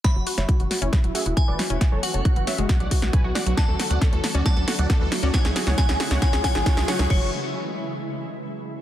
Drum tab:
CC |----------------|----------------|----------------|----------------|
HH |x-oxxxoxxxoxx-ox|x-oxxxoxxxoxx-ox|x-oxxxoxxxoxx-ox|x-oxxxoxxxoxxxox|
SD |o--o--o-o-----o-|o-----o-o--o--o-|o-o-o-o-o-o-o-o-|oooooooooooooooo|
BD |o---o---o---o---|o---o---o-o-o---|o---o---o---o---|o---o---o-o-o---|

CC |x---------------|
HH |----------------|
SD |----------------|
BD |o---------------|